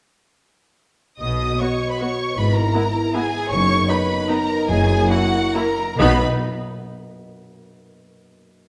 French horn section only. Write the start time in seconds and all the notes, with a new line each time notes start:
1.21 B3 F#4
2.38 E4
3.51 B3 D#4
4.69 A#3 E4
5.99 B3 D#4